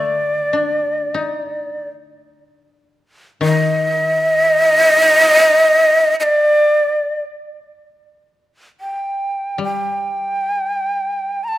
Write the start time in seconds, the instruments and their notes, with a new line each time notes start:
Already playing: koto D3 D#3 A3, shakuhachi D5
0.53 koto D4
1.14 koto D#4
3.41 koto D#3, shakuhachi D#5
6.20 shakuhachi D5 D#5
8.81 shakuhachi G5
9.58 koto G3
9.64 shakuhachi G5
11.44 shakuhachi A#5
11.48 shakuhachi A5